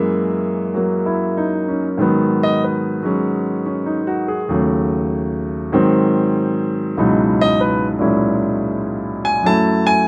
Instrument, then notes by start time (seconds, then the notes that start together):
grand piano
Already playing: F#2 E3 G#3 A#3 G#4 A#4 E5
0.74 F#3 A#3
1.06 E4
1.37 D#4
1.68 C#4
1.98 G#2 D#3 F#3
2.02 B3
2.43 D#5
2.64 B4
3.03 F#3 G#3 C#4
3.66 C#4
3.86 D#4
4.07 F#4
4.28 G#4
4.49 D#2 C#3 F#3 A3
5.72 G#2 D#3 F#3 C4
6.97 C#2 G#2 B2 E3 F#3 D#4
7.41 D#5
7.61 B4
7.99 A#2 F#3 G#3 C#4 E4
9.25 G#5
9.43 F#2 F#3 A3 A5
9.47 E4
9.87 G#5